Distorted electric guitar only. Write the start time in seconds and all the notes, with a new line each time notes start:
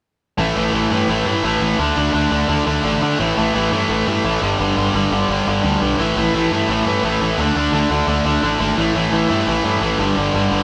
0.38 A2 E3 A3
0.56 A2 E3 A3
0.73 A2 E3 A3
0.91 A2 E3 A3
1.08 A2 E3 A3
1.26 A2 E3 A3
1.43 A2 E3 A3
1.61 A2 E3 A3
1.79 D3 A3 D4
1.96 D3 A3 D4
2.13 D3 A3 D4
2.31 D3 A3 D4
2.48 D3 A3 D4
2.66 D3 A3 D4
2.84 D3 A3 D4
3.02 D3 A3 D4
3.19 A2 E3 A3
3.37 A2 E3 A3
3.54 A2 E3 A3
3.71 A2 E3 A3
3.89 A2 E3 A3
4.07 A2 E3 A3
4.25 A2 E3 A3
4.41 G2 D3 G3
4.59 G2 D3 G3
4.77 G2 D3 G3
4.94 G2 D3 G3
5.12 G2 D3 G3
5.29 G2 D3 G3
5.47 G2 D3 G3
5.63 G2 D3 G3
5.81 G2 D3 G3
5.98 A2 E3 A3
6.16 A2 E3 A3
6.34 A2 E3 A3
6.52 A2 E3 A3
6.69 A2 E3 A3
6.86 A2 E3 A3
7.04 A2 E3 A3
7.21 A2 E3 A3
7.39 D3 A3 D4
7.56 D3 A3 D4
7.73 D3 A3 D4
7.90 D3 A3 D4
8.08 D3 A3 D4
8.25 D3 A3 D4
8.42 D3 A3 D4
8.59 D3 A3 D4
8.77 A2 E3 A3
8.95 A2 E3 A3
9.12 A2 E3 A3
9.29 A2 E3 A3
9.47 A2 E3 A3
9.64 A2 E3 A3
9.81 A2 E3 A3
9.99 G2 D3 G3
10.16 G2 D3 G3
10.34 G2 D3 G3
10.50 G2 D3 G3